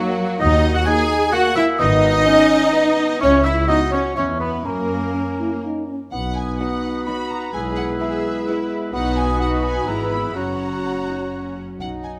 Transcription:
Already playing: F#3 A#3 D#4 F#4 F#5
0.39 D#2 D#4 F#4 D#5 D#6
0.74 F#4 F#5 F#6
0.86 A#3 D#4 F#4 G#4 G#5 G#6
1.32 A#3 F#4 F#5 F#6
1.55 E4 E5 E6
1.78 G#1 B3 D#4 D#5 D#6
2.26 B3 C#4 D#4
2.73 B3 D#4
3.20 C#2 C#4 E4 C#5 C#6
3.44 E4 E5 E6
3.68 B3 D#4 E4 F#4 D#5 D#6
3.91 C#4 C#5 C#6
4.15 E2 C#4 E4 C#5 C#6
4.40 B3 B4 B5
4.65 F#2 A#3 C#4 A#4 A#5
5.14 C#4
5.39 E4
5.64 D#4
5.88 C#4
6.12 B1 B3 D#4 F#4 B4 F#5 D#6
6.36 G#5
6.59 F#3 D#4 F#4 B4 F#5
7.06 F#3 D#4 F#4 B4 B5
7.30 A#5
7.53 B1 G#3 E4 G#4 G#5 E6
7.76 F#5
7.99 B3 E4 G#4 B4 E5
8.47 B3 E4 G#4 B4
8.93 B1 F#3 B3 D#4 F#4 B4 F#5 D#6
9.16 G#5
9.39 B3 D#4 F#4 B4 F#5
9.63 G#5
9.87 G#1 E3 B3 E4 G#4 B4 A#5 E6
10.11 B5
10.35 F#1 F#3 C#4 F#4 C#5 F#5 A#5 F#6
10.84 C#4
11.08 D#4
11.31 C#4
11.80 B1 D#4 F#5
12.04 G#5

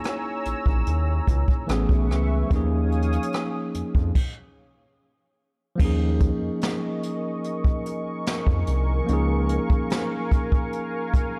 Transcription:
Already playing: A#3 C#4 D#4 E4 G#4 C#5 G#5 A#5 E6
0.04 cross-stick, closed hi-hat
0.45 A#1, closed hi-hat
0.66 A#1, kick
0.87 D#2, closed hi-hat
1.28 C#2, kick, closed hi-hat
1.48 kick
1.67 A1 E3 A3 B3 C#4 B4 E5 C#6, cross-stick, closed hi-hat
1.71 G#4
1.89 B1, kick
2.10 C#2, cross-stick
2.47 F3 A#3 C#5, closed hi-hat
2.51 D#2 C#4 D#4 F5 G#5 D#6, kick
2.56 G#4
2.92 closed hi-hat
3.02 closed hi-hat
3.12 closed hi-hat
3.23 closed hi-hat
3.32 cross-stick, closed hi-hat
3.74 F2, closed hi-hat
3.95 F2, kick
4.15 kick, crash
5.76 F3 A#3 D#5
5.80 D#2 C#4 D#4 A#4 G#5 C#6, kick, crash
5.85 G#4
6.20 kick, closed hi-hat
6.42 F2
6.61 snare, closed hi-hat
7.03 closed hi-hat
7.44 closed hi-hat
7.64 kick
7.86 closed hi-hat
8.26 snare, closed hi-hat
8.47 F2, kick
8.67 C2, closed hi-hat
9.04 F3 A#3
9.08 C#2 C#4 D#4 F5, closed hi-hat
9.13 G#4
9.49 closed hi-hat
9.70 D#2, kick
9.90 snare, closed hi-hat
10.31 kick, closed hi-hat
10.52 kick
10.73 closed hi-hat
11.14 kick, closed hi-hat

